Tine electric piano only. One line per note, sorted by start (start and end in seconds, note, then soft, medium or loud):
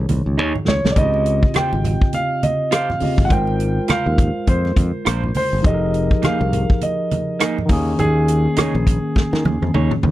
0.00 0.61 D#3 medium
0.00 0.62 D#4 medium
0.00 0.67 G#4 medium
0.00 0.65 C#5 medium
0.93 2.95 C#3 medium
0.93 2.96 C4 soft
0.93 1.04 D#4 soft
0.98 2.98 G4 soft
0.98 2.99 D#5 medium
1.03 3.00 F4 medium
3.00 3.30 C#3 soft
3.00 3.30 C4 soft
3.00 3.27 F4 soft
3.00 3.31 G4 soft
3.00 3.31 D#5 soft
3.26 5.58 G#3 medium
3.26 5.60 F4 medium
3.31 5.61 A#4 medium
3.31 5.62 C5 medium
5.61 7.63 F3 medium
5.61 7.64 D#4 medium
5.61 7.65 G4 medium
5.66 7.66 G#4 medium
5.66 5.74 A4 medium
5.74 7.70 A#4 medium
7.66 9.97 D#3 medium
7.66 9.99 A#3 medium
7.70 10.00 C#4 medium
7.70 10.01 G#4 medium